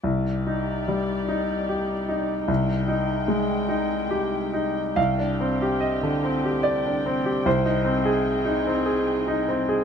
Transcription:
0.04 C2 D#4 G4 D5
0.47 D#4
0.88 G3
1.28 D#4
1.69 G4
2.09 D#4
2.48 C2 G#3 G5
2.88 D#4
3.28 G#3
3.69 D#4
4.11 G4
4.53 D#4
4.96 C2 D3 G4 F5 G5
5.18 D4
5.41 C4
5.62 G4
5.80 D#5
6.03 D3
6.24 C4
6.45 G4
6.63 D5
6.86 D4
7.06 C4
7.26 G4
7.45 C2 D#4 G#4 C5
7.65 D#4
7.85 C4
8.05 G#4
8.45 D#4
8.67 C4
8.86 G#4
9.27 D#4
9.48 C4
9.69 G#4

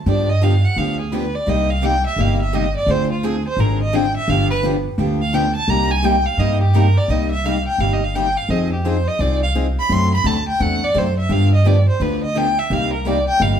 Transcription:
0.06 G2 D3 F3 B3 D4 G4 D5
0.29 D#5
0.41 D3 F3 B3 D4 G4 F5
0.65 F#5
0.76 D2 D3 F3 B3 D4 G4 F5
1.00 G#4
1.12 D3 F3 B3 D4 G4 B4
1.35 D5
1.46 C2 C3 G3 A#3 D#4 G4 D#5
1.70 F5
1.82 C3 G3 A#3 D#4 G4 G5
2.06 E5
2.16 G1 C3 G3 A#3 D#4 G4
2.21 F5
2.42 E5
2.53 C3 G3 A#3 D#4 G4 D#5
2.77 D5
2.86 D2 D3 F3 C4 D4 G#4
2.91 C5
3.12 F4
3.23 D3 F3 C4 D4 G#4
3.48 C5
3.57 G#1 D3 F3 C4 D4 G#4 A#4
3.82 D#5
3.92 D3 F3 C4 D4 G#4 G5
4.17 E5
4.27 G1 D3 F3 B3 D4 G4 F5
4.50 B4
4.62 D3 F3 B3 D4 G4
4.98 D2 D3 F3 B3 D4 G4
5.22 F5
5.33 D3 F3 B3 D4 G4 G5
5.55 A5
5.68 C2 C3 G3 A#3 D#4 G4 A#5
5.91 G#5
6.02 C3 G3 A#3 D#4 G4 G5
6.26 F5
6.37 G2 C3 G3 A#3 D#4 G4 D#5
6.61 G4
6.74 C3 G3 A#3 D#4 G4 A#4
6.97 D5
7.08 C2 C3 G3 A#3 D#4 G4 D#5
7.31 E5
7.45 C3 G3 A#3 D#4 G4 F5
7.67 G5
7.78 G1 C3 G3 A#3 D#4 G4 F5
7.93 D#5
8.04 F5
8.15 C3 G3 A#3 D#4 G4 G5
8.37 F5
8.49 F2 F3 C4 D#4 G#4 D#5
8.73 G4
8.85 F3 C4 D#4 G#4 C5
9.08 D#5
9.19 C2 F3 C4 D#4 G#4 D5
9.43 F5
9.55 F3 C4 D#4 G#4
9.80 B5
9.89 F#2 C3 F#3 A3 C4 D4 F#4 A4 C6
10.14 B5
10.24 D2 C3 F#3 A3 C4 D4 F#4 A4 A5
10.48 G5
10.59 E2 C3 F#3 A3 C4 D4 F#4 A4 F#5
10.84 D5
10.94 F#2 C3 F#3 A3 C4 D4 F#4 A4 C5
11.19 E5
11.29 G2 D3 F3 B3 D4 G4 F5
11.55 D#5
11.65 D3 F3 B3 D4 G4 D5
11.89 C5
12.00 D2 D3 F3 B3 D4 G4 B4
12.24 D#5
12.35 D3 F3 B3 D4 G4 G5
12.59 E5
12.70 C2 C3 G3 A#3 D#4 G4 F5
12.93 A#4
13.05 C3 G3 A#3 D#4 G4 D5
13.28 G5
13.40 G1 C3 G3 A#3 D#4 G4 F5

